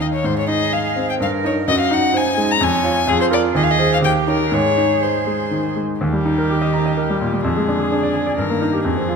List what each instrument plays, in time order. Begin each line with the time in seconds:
Already playing: grand piano D#2
0.00 grand piano D#4 D#5, violin D#5
0.14 violin C#5
0.24 grand piano G#2, cello G#4, violin C5
0.39 violin C#5
0.48 grand piano D#4, violin D#5
0.73 grand piano D#5, violin F5
0.96 grand piano C4
1.10 violin G5
1.20 grand piano G2, cello A#4, violin F5
1.44 grand piano D#4 D#5, violin C#5
1.67 grand piano F#2, cello F#4, violin D#5
1.80 violin F5
1.91 grand piano D#4, violin F#5
2.14 cello D#4, grand piano C5, violin G#5
2.37 grand piano G#3
2.51 violin A#5
2.61 grand piano F2, cello C#4, violin G#5
2.84 grand piano F4 C#5
3.07 grand piano F2, cello F4, violin G#4
3.21 violin C5
3.30 grand piano F4 A#4, violin D5
3.55 grand piano D#2, cello G#4, violin D#5
3.63 violin F5
3.71 violin D#5
3.78 grand piano G#4 C5
3.94 violin F5
4.02 grand piano D#2, cello G4, violin G5
4.27 grand piano D#4 C#5, violin A#4
4.51 grand piano G#2, cello G#4, violin C#5
4.77 grand piano D#4
5.02 grand piano C5, violin C5
5.27 grand piano G#3
5.51 grand piano D#3
5.76 grand piano G#3
6.01 grand piano D#2, cello D#3, violin G4
6.13 grand piano G3
6.25 grand piano D#4
6.38 grand piano A#4
6.50 grand piano G4
6.62 grand piano D#5
6.74 grand piano A#5
6.86 grand piano D#5
6.97 grand piano A#4
7.10 grand piano G3
7.21 grand piano A#2
7.33 grand piano G3
7.44 grand piano F2, cello D3, violin G#4
7.57 grand piano G#3
7.68 grand piano D4
7.80 grand piano G#4
7.92 grand piano D4
8.03 grand piano D5
8.15 grand piano G#5
8.26 grand piano D5
8.38 grand piano G2, cello D#3, violin A#4
8.50 grand piano A#3
8.62 grand piano D#4
8.73 grand piano G4
8.84 grand piano F2, cello F3, violin G#4
8.97 grand piano C4
9.08 grand piano F4